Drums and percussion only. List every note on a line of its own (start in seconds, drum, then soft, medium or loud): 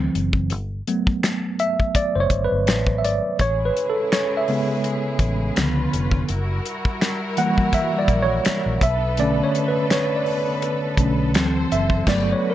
0.15 closed hi-hat medium
0.33 kick medium
0.50 closed hi-hat medium
0.87 closed hi-hat medium
1.07 kick medium
1.23 finger snap medium
1.23 snare medium
1.23 closed hi-hat medium
1.59 closed hi-hat medium
1.80 kick medium
1.95 kick medium
1.95 closed hi-hat medium
2.30 kick medium
2.30 closed hi-hat medium
2.67 finger snap medium
2.67 snare loud
2.67 closed hi-hat medium
2.87 kick medium
3.05 closed hi-hat medium
3.39 kick medium
3.39 closed hi-hat medium
3.77 closed hi-hat medium
4.12 finger snap medium
4.12 snare loud
4.12 closed hi-hat medium
4.48 open hi-hat soft
4.84 closed hi-hat medium
5.19 kick medium
5.19 closed hi-hat medium
5.56 finger snap medium
5.56 snare loud
5.56 closed hi-hat medium
5.93 closed hi-hat medium
6.11 kick medium
6.29 closed hi-hat medium
6.66 closed hi-hat medium
6.85 kick loud
7.01 finger snap medium
7.01 snare loud
7.01 closed hi-hat medium
7.37 closed hi-hat medium
7.58 kick medium
7.73 kick medium
7.73 closed hi-hat medium
8.08 kick medium
8.08 closed hi-hat medium
8.45 finger snap medium
8.45 snare loud
8.45 closed hi-hat medium
8.81 kick loud
8.81 closed hi-hat medium
9.17 closed hi-hat medium
9.55 closed hi-hat medium
9.90 finger snap medium
9.90 snare loud
9.90 closed hi-hat medium
10.26 open hi-hat soft
10.62 closed hi-hat medium
10.97 kick medium
10.97 closed hi-hat medium
11.34 finger snap medium
11.34 snare loud
11.34 closed hi-hat medium
11.72 closed hi-hat medium
11.90 kick medium
12.07 kick loud
12.07 snare loud
12.07 crash medium